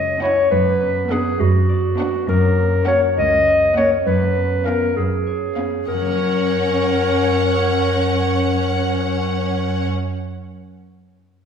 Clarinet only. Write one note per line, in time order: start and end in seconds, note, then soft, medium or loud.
0.00 0.21 D#5 medium
0.22 0.51 C#5 medium
0.51 1.13 B4 medium
1.11 1.41 G#4 medium
1.40 2.28 F#4 medium
2.29 2.87 A#4 medium
2.88 3.01 C#5 medium
3.18 3.76 D#5 medium
3.77 3.90 C#5 medium
4.07 4.67 B4 medium
4.66 4.98 A#4 medium
4.97 5.87 G#4 medium
5.88 9.89 A#4 soft